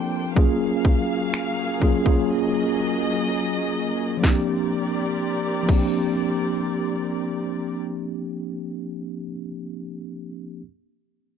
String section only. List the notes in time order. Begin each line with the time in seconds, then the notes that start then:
Already playing: A#3 D4 C5 G5
0.36 F#3 A#3 G#4 F5
2.30 D#5
4.23 C4 G4 A#4 D5